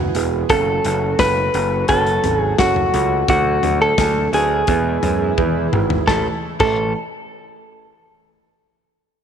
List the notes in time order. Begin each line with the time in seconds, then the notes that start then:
Already playing: E3 G#3 B3 E4 F#4 G#4 B4
0.15 E1 B3 E4 G#4, closed hi-hat
0.49 F#1 C#3 F#3 A3 C#4 F#4 A4, kick, closed hi-hat
0.84 F#1 C#4 F#4 B4, closed hi-hat
1.19 F#1 C#4 F#4 A4 B4, kick, snare, closed hi-hat
1.54 F#1 C#4 F#4 B4, closed hi-hat
1.88 F#1 C#4 F#4 A4 B4, kick, closed hi-hat
2.07 closed hi-hat
2.24 G#1 C#4 F#4 A4, closed hi-hat, floor tom
2.39 G#4
2.58 F#1 C#4 F#4 A4, kick, snare, closed hi-hat
2.76 floor tom
2.94 C#2 C#4 F#4 A4, closed hi-hat
3.28 D2 A2 D3 D4 F#4 A4, kick, closed hi-hat
3.63 D2 D4 F#4 A4, closed hi-hat, floor tom
3.82 A4
3.98 D2 D4 F#4 G#5, kick, snare, closed hi-hat
4.33 D2 D4 F#4 G#4 B4, closed hi-hat
4.67 E2 B2 E3 G#3 B3 E4 G#4, kick, closed hi-hat
5.03 F#2 B3 E4 B4, closed hi-hat, floor tom
5.38 E2 B3 E4 G#4, kick, high tom
5.73 G#1 B3 E4 G#4, mid tom
5.90 floor tom
6.08 A1 C#3 E3 A3 C#4 E4 A4, kick, snare
6.60 A1 E3 A3 C#4 A4, kick, crash